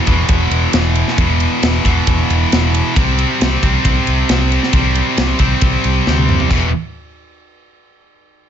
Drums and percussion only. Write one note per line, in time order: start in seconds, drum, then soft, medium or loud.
0.07 kick medium
0.07 ride medium
0.29 kick loud
0.29 ride medium
0.51 ride medium
0.73 snare loud
0.73 ride medium
0.95 ride medium
1.08 snare soft
1.18 kick loud
1.18 ride medium
1.40 ride medium
1.63 snare loud
1.63 ride loud
1.85 kick medium
1.85 ride medium
2.07 kick loud
2.07 ride medium
2.30 ride medium
2.52 snare loud
2.52 ride loud
2.74 ride medium
2.96 kick loud
2.96 ride medium
3.18 ride medium
3.41 snare loud
3.41 ride medium
3.63 kick medium
3.63 ride medium
3.85 kick loud
3.85 ride medium
4.07 ride medium
4.29 snare loud
4.29 ride medium
4.52 ride medium
4.63 snare soft
4.73 kick loud
4.73 ride medium
4.95 ride medium
5.17 snare loud
5.17 ride medium
5.39 kick medium
5.39 ride medium
5.61 kick loud
5.61 ride medium
5.84 ride medium
6.07 snare medium
6.18 high tom medium
6.29 mid tom medium
6.40 floor tom medium
6.51 kick loud
6.51 crash medium